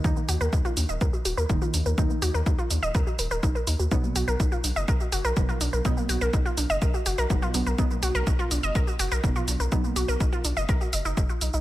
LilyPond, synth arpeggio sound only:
\new Staff \with { instrumentName = "Synth arpeggio sound" } { \time 4/4 \key ces \lydian \tempo 4 = 124 ees'16 bes16 ges'16 bes'16 ees'16 f'16 d'16 ees''16 bes'16 ges'16 ges'16 bes'16 ees'16 f'16 d'16 bes'16 | ees'16 bes16 ges'16 bes'16 ees'16 f'16 d'16 ees''16 bes'16 ges'16 bes'16 bes'16 ees'16 bes'16 ees'16 ges'16 | dis'16 bes16 fis'16 bes'16 dis'16 f'16 d'16 dis''16 bes'16 fis'16 fis'16 bes'16 dis'16 f'16 d'16 bes'16 | dis'16 bes16 fis'16 bes'16 dis'16 f'16 d'16 dis''16 bes'16 fis'16 fis'16 bes'16 dis'16 f'16 d'16 bes'16 |
dis'16 bes16 fis'16 bes'16 dis'16 f'16 d'16 dis''16 bes'16 fis'16 fis'16 bes'16 dis'16 f'16 d'16 bes'16 | dis'16 bes16 fis'16 bes'16 dis'16 f'16 d'16 dis''16 bes'16 fis'16 dis''16 dis'16 dis'16 f'16 dis'16 dis'16 | }